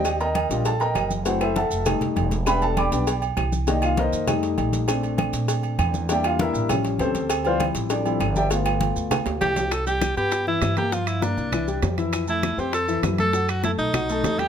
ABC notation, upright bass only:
X:1
M:4/4
L:1/8
Q:1/4=199
K:C
V:1 name="Upright bass" clef=bass
_E,,3 _B,,,3 ^F,,,2- | ^F,,,3 =F,,,2 F,,, E,,,2- | E,,,3 B,,,3 C,,2- | C,,3 F,,3 _B,,,2- |
_B,,,3 _B,,3 E,,2- | E,,3 A,,,3 D,,2- | D,,3 A,,,3 G,,,2- | G,,,3 D,,2 D,, C,,2- |
C,,3 G,,3 G,,2- | G,,3 C,,3 F,,2- | F,,3 F,,3 ^F,,2- | ^F,,3 B,,,3 E,,2 |]